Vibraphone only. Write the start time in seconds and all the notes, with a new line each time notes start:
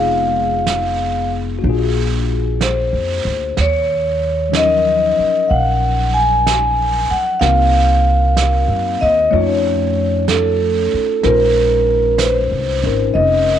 Already playing: F5
2.62 C5
3.61 C#5
4.56 D#5
5.48 F5 F#5
6.14 G#5
7.11 F#5
7.40 F5
9.01 D#5
9.31 C#5
10.29 A4
11.23 A#4
12.18 B4 C5
13.14 D#5